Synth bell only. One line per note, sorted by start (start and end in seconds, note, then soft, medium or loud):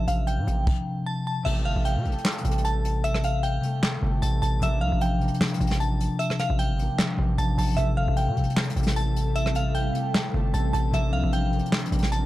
0.08 0.23 F5 medium
0.27 1.02 G5 medium
1.06 1.22 A5 medium
1.27 1.42 A5 medium
1.45 1.61 E5 loud
1.65 1.81 F5 medium
1.85 2.60 G5 medium
2.65 3.02 A5 medium
3.04 3.20 E5 loud
3.24 3.40 F5 medium
3.43 4.18 G5 medium
4.22 4.38 A5 medium
4.42 4.58 A5 medium
4.63 4.78 E5 loud
4.81 4.97 F5 medium
5.02 5.76 G5 medium
5.80 6.17 A5 medium
6.19 6.35 E5 loud
6.40 6.55 F5 medium
6.59 7.34 G5 medium
7.38 7.54 A5 medium
7.59 7.74 A5 medium
7.77 7.93 E5 loud
7.97 8.13 F5 medium
8.17 8.92 G5 medium
8.96 9.33 A5 medium
9.36 9.51 E5 loud
9.56 9.71 F5 medium
9.75 10.50 G5 medium
10.54 10.70 A5 medium
10.73 10.89 A5 medium
10.94 11.09 E5 loud
11.13 11.29 F5 medium
11.33 12.08 G5 medium
12.12 12.26 A5 medium